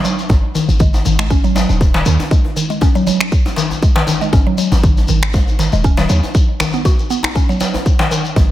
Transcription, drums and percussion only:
0.05 shekere
0.19 shekere
0.29 kick, djembe tone, shekere
0.55 djembe tone, shekere
0.69 shekere
0.80 kick, mid tom, shekere
0.94 djembe tone, shekere
1.05 shekere
1.19 finger snap, djembe tone, shekere
1.30 kick, shekere
1.44 shekere
1.56 djembe slap, djembe tone, shekere
1.69 shekere
1.81 kick, djembe tone, shekere
1.94 mid tom, djembe slap, shekere
2.05 shekere
2.20 djembe tone, shekere
2.31 kick, shekere
2.45 djembe tone
2.57 shekere
2.70 shekere
2.81 kick, djembe tone, shekere
2.95 shekere
3.07 djembe tone, shekere
3.21 finger snap
3.32 kick, shekere
3.46 djembe tone, shekere
3.56 djembe slap, shekere
3.71 djembe tone, shekere
3.82 kick, shekere
3.96 mid tom, djembe slap
4.07 djembe tone, shekere
4.22 shekere
4.33 kick, djembe tone, shekere
4.58 shekere
4.72 djembe tone, shekere
4.83 kick, mid tom, shekere
4.97 djembe tone, shekere
5.08 shekere
5.23 finger snap
5.33 kick, djembe tone, shekere
5.47 shekere
5.59 djembe slap, djembe tone, shekere
5.72 shekere
5.84 kick, shekere
5.97 mid tom, djembe slap, djembe tone, shekere
6.09 shekere
6.23 djembe tone, shekere
6.35 kick, shekere
6.60 finger snap, djembe tone, shekere
6.73 shekere
6.85 kick, djembe tone, shekere
6.99 shekere
7.10 shekere
7.23 finger snap, djembe tone, shekere
7.35 kick, djembe tone, shekere
7.50 shekere
7.60 djembe slap, shekere
7.74 djembe tone, shekere
7.86 kick, shekere
7.99 mid tom, djembe slap, djembe tone
8.11 shekere
8.25 shekere
8.36 kick, djembe tone, shekere

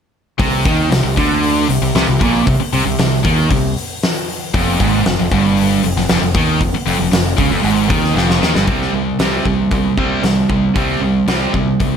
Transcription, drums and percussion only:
0.39 kick, open hi-hat
0.65 kick, open hi-hat
0.92 snare, open hi-hat
1.17 kick, open hi-hat
1.43 open hi-hat
1.69 open hi-hat
1.95 snare, open hi-hat
2.21 kick, open hi-hat
2.47 kick, open hi-hat
2.73 open hi-hat
2.99 snare, open hi-hat
3.25 kick, open hi-hat
3.50 kick, open hi-hat
3.77 open hi-hat
4.03 snare, open hi-hat
4.29 open hi-hat
4.54 kick, open hi-hat
4.80 kick, open hi-hat
5.05 snare, open hi-hat
5.32 kick, open hi-hat
5.57 open hi-hat
5.83 open hi-hat
5.96 snare
6.09 snare, open hi-hat
6.34 kick, open hi-hat
6.61 kick, open hi-hat
6.87 open hi-hat
7.13 snare, open hi-hat
7.38 kick, open hi-hat
7.64 open hi-hat
7.90 kick, open hi-hat
8.04 snare
8.17 snare
8.30 snare
8.43 snare
8.55 snare
8.67 kick, open hi-hat
8.82 snare
9.19 snare, open hi-hat
9.45 kick
9.71 kick, open hi-hat
9.98 kick
10.23 snare, open hi-hat
10.50 kick
10.76 kick, open hi-hat
11.28 snare, open hi-hat
11.54 kick
11.80 kick, open hi-hat

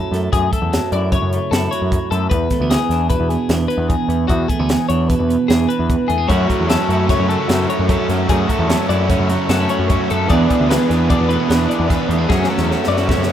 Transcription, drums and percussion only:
0.14 snare, closed hi-hat
0.33 kick, closed hi-hat
0.53 kick, closed hi-hat
0.73 snare, closed hi-hat
0.92 closed hi-hat
1.12 kick, closed hi-hat
1.33 closed hi-hat
1.53 snare, closed hi-hat
1.72 closed hi-hat
1.92 kick, closed hi-hat
2.12 closed hi-hat
2.31 kick, closed hi-hat
2.50 kick, snare, closed hi-hat
2.71 snare, closed hi-hat
2.91 snare, closed hi-hat
3.10 kick, closed hi-hat
3.30 closed hi-hat
3.49 snare, closed hi-hat
3.70 closed hi-hat
3.90 kick, closed hi-hat
4.10 closed hi-hat
4.29 kick, closed hi-hat
4.49 kick, closed hi-hat
4.69 snare, closed hi-hat
4.90 closed hi-hat
5.10 kick, closed hi-hat
5.30 closed hi-hat
5.50 snare, closed hi-hat
5.70 closed hi-hat
5.90 kick, closed hi-hat
6.10 closed hi-hat
6.30 kick, closed hi-hat
6.50 kick, closed hi-hat
6.70 snare, closed hi-hat
6.90 closed hi-hat
7.09 kick, snare, closed hi-hat
7.30 closed hi-hat
7.49 snare, closed hi-hat
7.70 closed hi-hat
7.89 kick, closed hi-hat
8.10 snare, closed hi-hat
8.29 kick, closed hi-hat
8.49 kick, closed hi-hat
8.70 snare, closed hi-hat
8.90 closed hi-hat
9.10 kick, closed hi-hat
9.30 snare, closed hi-hat
9.49 snare, closed hi-hat
9.69 closed hi-hat
9.90 kick, closed hi-hat
10.10 closed hi-hat
10.29 kick, closed hi-hat
10.50 kick, closed hi-hat
10.71 snare, closed hi-hat
10.91 snare, closed hi-hat
11.10 kick, closed hi-hat
11.30 closed hi-hat
11.50 snare, closed hi-hat
11.71 closed hi-hat
11.90 kick, snare, closed hi-hat
12.11 closed hi-hat
12.30 kick, snare
12.44 snare
12.58 snare
12.71 snare
12.84 snare
12.97 snare
13.09 kick, snare
13.23 snare

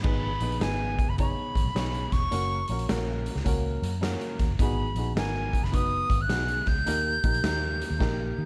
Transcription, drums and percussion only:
0.04 kick, crash
0.40 closed hi-hat
0.52 closed hi-hat
0.61 snare, closed hi-hat
0.99 kick, closed hi-hat
1.18 kick, closed hi-hat
1.55 kick, closed hi-hat
1.76 snare, closed hi-hat
1.94 closed hi-hat
2.12 kick, snare, closed hi-hat
2.32 closed hi-hat
2.68 closed hi-hat
2.79 closed hi-hat
2.89 snare, closed hi-hat
3.26 closed hi-hat
3.36 snare
3.46 kick, closed hi-hat
3.83 closed hi-hat
4.03 snare, closed hi-hat
4.21 closed hi-hat
4.39 kick, snare, closed hi-hat
4.59 kick, closed hi-hat
4.96 closed hi-hat
5.17 snare, closed hi-hat
5.53 kick, closed hi-hat
5.64 snare
5.73 kick, closed hi-hat
6.10 kick, closed hi-hat
6.29 snare, closed hi-hat
6.48 closed hi-hat
6.66 kick, snare, open hi-hat
6.87 closed hi-hat
7.23 kick, closed hi-hat
7.34 closed hi-hat
7.44 snare, closed hi-hat
7.82 closed hi-hat
8.00 kick, snare

